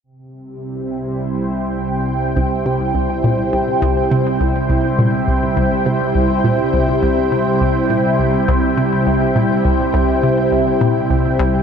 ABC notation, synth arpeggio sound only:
X:1
M:4/4
L:1/8
Q:1/4=103
K:Cmix
V:1 name="Synth arpeggio sound" clef=bass
z8 | C,, C, C,, B,, C,, C,, C, C,, | C,, B,, C,, C,, C, C,, B,, C,, | C,, C, C,, B,, C,, C,, C, C,, |
B,, C,, C,, C, C,, B,, C,, C,, |]